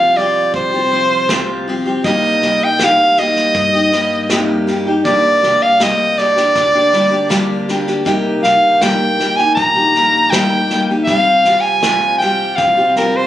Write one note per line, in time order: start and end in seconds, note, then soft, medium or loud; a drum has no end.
0.00 0.50 C2 medium
0.00 0.16 C3 medium
0.00 0.15 F3 medium
0.00 0.16 C4 medium
0.00 0.16 F4 medium
0.00 0.17 G4 medium
0.00 0.18 F5 medium
0.16 0.73 F3 medium
0.16 0.73 C4 medium
0.16 0.72 F4 medium
0.16 0.71 G4 medium
0.16 0.54 D5 medium
0.54 2.00 C2 medium
0.54 1.64 C5 medium
0.54 kick medium
0.73 0.91 C4 soft
0.73 0.91 F4 soft
0.73 0.91 G4 soft
0.91 1.28 F3 medium
0.91 1.28 C4 medium
0.91 1.29 F4 medium
0.91 1.29 G4 medium
1.29 1.67 C3 medium
1.29 1.66 F3 medium
1.29 1.67 C4 medium
1.29 1.67 F4 medium
1.29 1.67 G4 medium
1.29 kick medium
1.29 snare medium
1.68 1.86 F3 medium
1.68 1.86 C4 medium
1.68 1.85 F4 medium
1.68 1.84 G4 medium
1.85 2.05 C4 soft
1.85 2.05 F4 soft
1.85 2.04 G4 medium
2.04 2.40 C2 medium
2.04 2.43 C3 medium
2.04 2.42 G3 medium
2.04 2.43 A#3 medium
2.04 2.43 D#4 medium
2.04 2.43 G4 medium
2.04 2.66 D#5 medium
2.04 kick medium
2.04 snare soft
2.42 3.51 C2 medium
2.42 2.79 G3 soft
2.42 2.80 A#3 medium
2.42 2.81 D#4 medium
2.42 2.81 G4 medium
2.42 snare soft
2.64 2.86 G5 medium
2.79 3.18 C3 medium
2.79 3.17 G3 medium
2.79 3.18 A#3 medium
2.79 3.19 D#4 medium
2.79 3.18 G4 medium
2.79 kick medium
2.79 snare medium
2.84 3.20 F5 medium
3.17 3.74 G3 medium
3.17 3.74 A#3 medium
3.17 3.74 D#4 medium
3.17 4.69 D#5 medium
3.17 snare soft
3.21 3.72 G4 medium
3.36 snare soft
3.54 5.01 G2 medium
3.54 kick medium
3.54 snare soft
3.73 3.93 A#3 soft
3.73 3.93 D#4 soft
3.73 3.92 G4 soft
3.92 4.30 G3 medium
3.92 4.29 A#3 medium
3.92 4.31 D#4 soft
3.92 4.30 G4 medium
3.92 snare soft
4.30 4.68 C3 medium
4.30 4.66 G3 medium
4.30 4.67 A#3 medium
4.30 4.68 D#4 medium
4.30 4.68 G4 medium
4.30 kick medium
4.30 snare medium
4.67 4.86 G3 medium
4.67 4.87 A#3 medium
4.67 4.87 D#4 medium
4.67 4.85 G4 medium
4.67 snare soft
4.87 5.04 A#3 soft
4.87 5.05 D#4 soft
4.87 5.05 G4 medium
5.04 5.41 C2 medium
5.04 5.43 C3 medium
5.04 5.42 G3 medium
5.04 5.42 A#3 medium
5.04 5.43 D4 medium
5.04 5.43 G4 medium
5.04 5.64 D5 medium
5.04 kick medium
5.04 snare soft
5.43 6.53 C2 medium
5.43 5.79 G3 medium
5.43 5.80 A#3 medium
5.43 5.81 D4 medium
5.43 5.80 G4 medium
5.43 snare soft
5.62 5.84 F5 medium
5.80 6.18 C3 medium
5.80 6.17 G3 medium
5.80 6.17 A#3 medium
5.80 6.19 G4 medium
5.80 6.19 D#5 loud
5.80 kick medium
5.80 snare medium
6.18 6.37 G3 medium
6.18 6.36 A#3 medium
6.18 6.35 D4 medium
6.18 6.35 G4 medium
6.18 7.69 D5 medium
6.18 snare soft
6.36 6.74 A#3 soft
6.36 6.74 D4 soft
6.36 6.72 G4 soft
6.36 snare soft
6.55 8.03 D2 medium
6.55 kick medium
6.55 snare soft
6.74 6.92 A#3 soft
6.74 6.93 D4 soft
6.74 6.93 G4 medium
6.93 7.12 G3 medium
6.93 7.12 A#3 medium
6.93 7.11 D4 medium
6.93 7.09 G4 medium
6.93 snare soft
7.11 7.29 A#3 soft
7.11 7.29 D4 soft
7.11 7.30 G4 medium
7.29 7.68 C3 medium
7.29 7.67 G3 medium
7.29 7.68 A#3 medium
7.29 7.68 D4 medium
7.29 7.69 G4 loud
7.29 kick medium
7.29 snare medium
7.68 7.88 G3 medium
7.68 7.88 A#3 medium
7.68 7.88 D4 medium
7.68 7.86 G4 medium
7.68 snare soft
7.87 8.05 A#3 soft
7.87 8.06 D4 soft
7.87 8.06 G4 medium
7.87 snare soft
8.05 8.42 C2 medium
8.05 8.44 C3 medium
8.05 11.04 D#3 medium
8.05 8.42 G3 medium
8.05 13.27 G3 medium
8.05 11.04 A#3 medium
8.05 8.43 A#3 medium
8.05 8.43 D#4 medium
8.05 11.04 G4 medium
8.05 8.43 G4 medium
8.05 kick medium
8.05 snare soft
8.43 9.54 C2 medium
8.43 8.81 G3 soft
8.43 8.81 A#3 medium
8.43 8.81 D#4 medium
8.43 8.82 G4 medium
8.43 8.84 F5 medium
8.43 snare soft
8.81 9.19 C3 medium
8.81 9.19 G3 medium
8.81 9.19 A#3 medium
8.81 9.20 D#4 medium
8.81 9.20 G4 medium
8.81 9.38 G5 medium
8.81 kick medium
8.81 snare medium
9.19 9.39 G3 medium
9.19 9.39 A#3 medium
9.19 9.39 D#4 medium
9.19 9.38 G4 medium
9.19 snare soft
9.36 9.75 D#4 soft
9.36 9.74 G4 soft
9.36 9.54 G#5 medium
9.36 snare soft
9.41 9.76 A#3 soft
9.55 11.04 A#1 medium
9.55 10.32 A#5 loud
9.55 kick medium
9.55 snare soft
9.75 9.95 A#3 soft
9.75 9.95 D#4 soft
9.75 9.95 G4 medium
9.95 10.32 G3 medium
9.95 10.33 A#3 medium
9.95 10.33 D#4 medium
9.95 10.33 G4 medium
9.95 snare soft
10.31 10.70 C3 medium
10.31 10.70 G3 medium
10.31 10.70 A#3 medium
10.31 10.71 D#4 medium
10.31 10.71 G4 medium
10.31 10.88 G5 loud
10.31 kick medium
10.31 snare medium
10.70 10.89 G3 medium
10.70 10.90 A#3 medium
10.70 10.90 D#4 medium
10.70 10.89 G4 medium
10.70 snare soft
10.90 11.09 A#3 soft
10.90 11.09 D#4 soft
10.90 11.08 G4 soft
11.04 13.27 C3 medium
11.04 13.27 F3 medium
11.04 13.27 F4 medium
11.04 11.62 F5 medium
11.04 kick medium
11.04 snare soft
11.08 11.44 C2 medium
11.08 11.46 C3 medium
11.08 11.45 G3 medium
11.08 11.45 C4 medium
11.08 11.46 F4 medium
11.08 11.46 G4 medium
11.45 12.54 C2 medium
11.45 11.83 G3 medium
11.45 11.83 C4 medium
11.45 11.84 F4 medium
11.45 11.84 G4 medium
11.45 snare soft
11.61 12.18 G#5 loud
11.83 12.21 C3 medium
11.83 12.20 G3 medium
11.83 12.21 C4 medium
11.83 12.22 F4 medium
11.83 kick medium
11.83 snare medium
12.18 12.78 G3 medium
12.18 12.58 G5 medium
12.18 snare soft
12.22 12.78 C4 medium
12.22 12.77 F4 medium
12.22 12.76 G4 medium
12.56 13.27 C2 medium
12.56 12.95 F5 medium
12.56 kick medium
12.56 snare soft
12.77 12.96 C4 soft
12.77 12.96 F4 soft
12.77 12.96 G4 medium
12.96 13.27 G3 soft
12.96 13.27 C4 medium
12.96 13.27 F4 medium
12.96 13.27 G4 medium
12.96 13.18 A#4 medium
12.96 snare soft
13.17 13.27 C5 medium